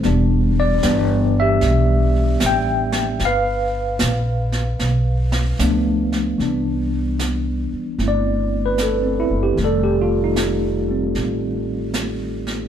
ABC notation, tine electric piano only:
X:1
M:4/4
L:1/16
Q:"Swing" 1/4=76
K:C
V:1 name="Tine electric piano"
z2 d4 e6 g4 | f12 z4 | z8 d3 B A C E G | A G F _E6 z6 z |]
V:2 name="Tine electric piano"
[E,G,B,D]2 z2 [E,G,B,D]2 G8 z2 | B12 [F,A,B,D]2 z2 | [E,G,B,D]8 [A,CE]8 | [_E,G,A,d]6 [G,C]8- [G,C]2 |]